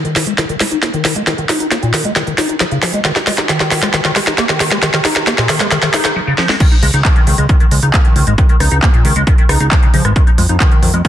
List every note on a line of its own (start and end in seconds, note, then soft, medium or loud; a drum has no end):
0.05 0.14 D#3 loud
0.05 closed hi-hat soft
0.16 0.26 D#3 medium
0.16 snare medium
0.16 open hi-hat loud
0.27 0.33 G#3 medium
0.27 closed hi-hat medium
0.38 0.45 D#3 loud
0.38 snare medium
0.38 closed hi-hat medium
0.49 0.56 D#3 loud
0.49 closed hi-hat soft
0.60 0.64 G#3 medium
0.60 snare medium
0.60 open hi-hat loud
0.71 0.78 D#4 medium
0.71 closed hi-hat medium
0.83 0.89 A#3 medium
0.83 snare medium
0.83 closed hi-hat soft
0.94 1.03 D#3 loud
0.94 closed hi-hat soft
1.05 1.14 D#3 medium
1.05 snare medium
1.05 open hi-hat loud
1.16 1.22 G#3 medium
1.16 closed hi-hat medium
1.27 1.33 D#3 loud
1.27 snare medium
1.27 closed hi-hat medium
1.38 1.45 D#3 loud
1.38 closed hi-hat soft
1.49 1.59 D#4 loud
1.49 snare medium
1.49 open hi-hat loud
1.60 1.67 D#4 medium
1.60 closed hi-hat medium
1.71 1.78 A#3 medium
1.71 snare medium
1.71 closed hi-hat medium
1.83 1.92 A#2 loud
1.83 closed hi-hat soft
1.94 2.03 D#3 medium
1.94 snare medium
1.94 open hi-hat loud
2.05 2.11 G#3 medium
2.05 closed hi-hat medium
2.16 2.22 D#3 loud
2.16 snare medium
2.16 closed hi-hat medium
2.27 2.33 D#3 medium
2.27 closed hi-hat soft
2.38 2.48 D#4 loud
2.38 snare medium
2.38 open hi-hat loud
2.49 2.56 D#4 medium
2.49 closed hi-hat medium
2.60 2.64 F3 loud
2.60 snare medium
2.60 closed hi-hat medium
2.71 2.78 C#3 loud
2.71 closed hi-hat soft
2.82 2.92 F3 loud
2.82 snare medium
2.82 open hi-hat loud
2.94 3.00 G#3 medium
2.94 closed hi-hat medium
3.05 3.11 D#3 loud
3.05 snare medium
3.05 closed hi-hat medium
3.16 3.20 D#4 medium
3.16 snare medium
3.16 closed hi-hat soft
3.27 3.31 G#3 medium
3.27 snare medium
3.27 open hi-hat loud
3.38 3.45 D#4 medium
3.38 snare medium
3.38 closed hi-hat medium
3.49 3.59 D#3 medium
3.49 snare medium
3.49 closed hi-hat medium
3.60 3.70 D#3 loud
3.60 snare medium
3.60 closed hi-hat soft
3.71 3.81 D#3 medium
3.71 snare medium
3.71 open hi-hat loud
3.83 3.89 G#3 medium
3.83 snare medium
3.83 closed hi-hat medium
3.94 4.00 D#3 loud
3.94 snare loud
3.94 closed hi-hat medium
4.05 4.11 D#3 loud
4.05 snare medium
4.05 closed hi-hat soft
4.16 4.20 G#3 medium
4.16 snare loud
4.16 open hi-hat loud
4.27 4.33 D#4 medium
4.27 snare medium
4.27 closed hi-hat medium
4.38 4.45 A#3 medium
4.38 snare loud
4.38 closed hi-hat medium
4.49 4.59 D#3 loud
4.49 snare medium
4.49 closed hi-hat soft
4.60 4.70 D#3 medium
4.60 snare loud
4.60 open hi-hat loud
4.71 4.78 G#3 medium
4.71 snare medium
4.71 closed hi-hat medium
4.83 4.89 D#3 loud
4.83 snare loud
4.83 closed hi-hat medium
4.94 5.00 D#3 loud
4.94 snare medium
4.94 closed hi-hat soft
5.05 5.14 D#4 loud
5.05 snare loud
5.05 open hi-hat loud
5.16 5.22 D#4 medium
5.16 snare medium
5.16 closed hi-hat medium
5.27 5.34 A#3 medium
5.27 snare loud
5.27 closed hi-hat medium
5.38 5.48 A#2 loud
5.38 snare medium
5.38 closed hi-hat soft
5.49 5.59 D#3 medium
5.49 snare loud
5.49 open hi-hat loud
5.60 5.67 G#3 medium
5.60 snare medium
5.60 closed hi-hat medium
5.71 5.78 D#3 loud
5.71 snare loud
5.71 closed hi-hat medium
5.83 5.89 D#3 medium
5.83 snare medium
5.83 closed hi-hat soft
5.94 6.03 D#4 loud
5.94 snare loud
5.94 open hi-hat loud
6.05 6.11 D#4 medium
6.05 snare loud
6.05 closed hi-hat medium
6.16 6.20 F3 loud
6.27 6.34 C#3 loud
6.38 6.48 F3 loud
6.38 snare medium
6.49 6.56 G#3 medium
6.49 snare medium
6.60 6.67 D#3 loud
6.60 kick loud
6.60 closed hi-hat medium
6.60 crash loud
6.71 6.75 D#4 medium
6.71 closed hi-hat soft
6.83 6.91 C#2 medium
6.83 6.87 G#3 medium
6.83 open hi-hat loud
6.94 7.02 C#2 medium
6.94 7.00 D#4 medium
6.94 closed hi-hat medium
7.05 7.15 D#3 medium
7.05 kick loud
7.05 clap loud
7.05 closed hi-hat medium
7.16 7.26 D#3 loud
7.16 closed hi-hat soft
7.27 7.36 C#2 loud
7.27 7.37 D#3 medium
7.27 open hi-hat medium
7.38 7.47 C#2 medium
7.38 7.45 G#3 medium
7.38 closed hi-hat medium
7.49 7.56 D#3 loud
7.49 kick loud
7.49 closed hi-hat medium
7.60 7.67 D#3 loud
7.60 closed hi-hat soft
7.71 7.80 C#2 loud
7.71 7.75 G#3 medium
7.71 open hi-hat loud
7.83 7.91 C#2 medium
7.83 7.89 D#4 medium
7.83 closed hi-hat medium
7.94 8.00 A#3 medium
7.94 kick loud
7.94 clap loud
7.94 closed hi-hat medium
8.05 8.15 D#3 loud
8.05 closed hi-hat soft
8.16 8.25 C#2 medium
8.16 8.26 D#3 medium
8.16 open hi-hat medium
8.27 8.36 G#1 medium
8.27 8.34 G#3 medium
8.27 closed hi-hat medium
8.38 8.45 D#3 loud
8.38 kick loud
8.38 closed hi-hat medium
8.49 8.56 D#3 loud
8.49 closed hi-hat soft
8.60 8.69 C#2 medium
8.60 8.70 D#4 loud
8.60 cross-stick medium
8.60 open hi-hat loud
8.71 8.80 C#2 medium
8.71 8.78 D#4 medium
8.71 closed hi-hat medium
8.83 8.89 A#3 medium
8.83 kick loud
8.83 clap loud
8.83 closed hi-hat medium
8.94 9.03 A#2 loud
8.94 closed hi-hat soft
9.05 9.13 C#2 loud
9.05 9.14 D#3 medium
9.05 open hi-hat medium
9.16 9.24 C#2 medium
9.16 9.22 G#3 medium
9.16 closed hi-hat medium
9.27 9.34 D#3 loud
9.27 kick loud
9.27 closed hi-hat medium
9.38 9.45 D#3 medium
9.38 closed hi-hat soft
9.49 9.58 C#2 loud
9.49 9.59 D#4 loud
9.49 cross-stick medium
9.49 open hi-hat loud
9.60 9.69 C#2 medium
9.60 9.67 D#4 medium
9.60 closed hi-hat medium
9.71 9.75 F3 loud
9.71 kick loud
9.71 clap loud
9.71 closed hi-hat medium
9.83 9.89 C#3 loud
9.83 closed hi-hat soft
9.94 10.02 C#2 loud
9.94 10.03 F3 loud
9.94 open hi-hat loud
10.05 10.13 G#1 medium
10.05 10.11 G#3 medium
10.05 cross-stick medium
10.05 closed hi-hat medium
10.16 10.22 D#3 loud
10.16 kick loud
10.16 closed hi-hat medium
10.27 10.31 D#4 medium
10.27 closed hi-hat soft
10.38 10.47 F2 loud
10.38 10.42 G#3 medium
10.38 open hi-hat loud
10.49 10.58 F2 medium
10.49 10.56 D#4 medium
10.49 closed hi-hat medium
10.60 10.70 D#3 medium
10.60 kick loud
10.60 clap loud
10.60 closed hi-hat medium
10.71 10.81 D#3 loud
10.71 closed hi-hat soft
10.82 10.91 F2 medium
10.82 10.92 D#3 medium
10.82 open hi-hat loud
10.94 11.02 F2 medium
10.94 11.00 G#3 medium
10.94 closed hi-hat medium
11.05 11.08 D#3 loud
11.05 kick loud
11.05 closed hi-hat medium